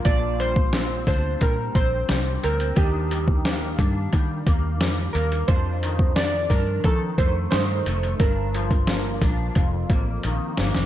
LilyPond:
<<
  \new Staff \with { instrumentName = "Synth keys" } { \time 4/4 \key bes \major \tempo 4 = 88 d''8 c''4 c''8 bes'8 c''4 bes'8 | g'2 r4. bes'8 | c''4 d''8 bes'8 a'8 c''8 c''4 | bes'2 r2 | }
  \new Staff \with { instrumentName = "Clean electric guitar" } { \time 4/4 \key bes \major <bes, d'>8 g8 c'8 d'8 g8 c'8 g8 c'8 | <ees d'>8 g8 bes8 d'8 g8 bes8 g8 bes8 | <f, d'>8 ees4 d'8 ees8 a8 ees8 a8 | <g, d'>8 f8 bes8 d'8 f,8 bes8 ees8 bes8 | }
  \new Staff \with { instrumentName = "Fingered electric bass" } { \clef bass \time 4/4 \key bes \major bes,,4. d,8 bes,8 bes,,8 c,8 d,8 | ees,4. g,8 ees8 ees,8 f,8 ees,8 | f,4. g,8 f8 f,8 g,8 f,,8 | g,,4. bes,,8 f,,8 a,,8 bes,,16 r16 g,,16 f,,16 | }
  \new DrumStaff \with { instrumentName = "Drums" } \drummode { \time 4/4 <hh bd>8 hh16 bd16 <hh sn>8 <hh bd sn>8 <hh bd>8 <hh bd>8 <hh sn>8 hh16 hh16 | <hh bd>8 hh16 bd16 <hh sn>8 <hh bd>8 <hh bd>8 <hh bd>8 <hh sn>8 hh16 hh16 | <hh bd>8 hh16 bd16 <hh sn>8 <hh bd sn>8 <hh bd>8 <hh bd>8 <hh sn>8 hh16 hh16 | <hh bd>8 hh16 <hh bd>16 <hh sn>8 <hh bd sn>8 <hh bd>8 <hh bd>8 hh8 <hho sn>16 <hh sn>16 | }
>>